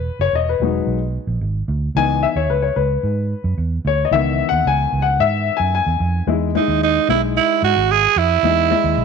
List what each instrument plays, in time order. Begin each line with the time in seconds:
Already playing: grand piano B4
0.19 fingered electric bass F#1, grand piano C#5
0.33 fingered electric bass E1, grand piano D#5
0.49 grand piano B4
0.60 fingered electric bass E1, grand piano F#3 G#3 D#4
0.87 fingered electric bass B1
1.27 fingered electric bass A#1
1.41 fingered electric bass G#1
1.68 fingered electric bass D2
1.95 fingered electric bass C#2, grand piano E3 B3 D#4 G#5
2.23 grand piano E5
2.35 fingered electric bass D#2, grand piano C#5
2.49 fingered electric bass C#2, grand piano B4
2.62 grand piano C#5
2.76 fingered electric bass C#2, grand piano B4
3.03 fingered electric bass G#2
3.44 fingered electric bass F#2
3.57 fingered electric bass E2
3.85 fingered electric bass D2, grand piano C#5
4.05 grand piano D#5
4.11 fingered electric bass C#2, grand piano D#3 E3 B3 E5
4.49 fingered electric bass D#2, grand piano F#5
4.65 fingered electric bass C#2, grand piano G#5
4.92 fingered electric bass C#2
5.02 grand piano F#5
5.19 fingered electric bass G#2, grand piano E5
5.57 fingered electric bass F#2, grand piano G#5
5.75 grand piano G#5
5.86 fingered electric bass E2
6.00 fingered electric bass F2
6.27 fingered electric bass E2, grand piano G#3 D#4 E4
6.55 grand piano G#3 D#4 E4, tenor saxophone D#4
6.68 fingered electric bass D#2
6.83 tenor saxophone D#4
7.08 fingered electric bass B1, grand piano G#3 D#4 E4, tenor saxophone E4
7.37 tenor saxophone E4
7.63 fingered electric bass G#2, tenor saxophone F#4
7.76 fingered electric bass G#1
7.92 tenor saxophone G#4
8.16 fingered electric bass F2, tenor saxophone E4
8.43 fingered electric bass E2, grand piano G#3 D#4 E4
8.71 grand piano G#3 E4 D#5
8.84 fingered electric bass D#2
8.97 fingered electric bass B1